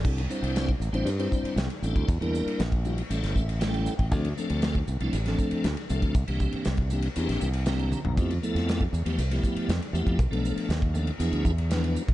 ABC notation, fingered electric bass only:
X:1
M:4/4
L:1/16
Q:1/4=118
K:C
V:1 name="Fingered electric bass" clef=bass
C,,2 z C,,3 A,,, A,,, G,,2 z2 C,, z A,,, D,, | E,, E,,2 z _B,,,4 A,,, G,,, A,,,4- A,,, A,,, | D,,2 z D,,3 C,, C,, A,,,2 z2 D,, z C,, D,, | C,, C,,2 z C,,4 E,, _B,,, C,,4- C,, B,,, |
F,,2 z F,,3 E,, E,, C,,2 z2 F,, z E,, F,, | B,,, B,,,2 z _E,,4 =E,, D,, E,,4- E,, B,,, |]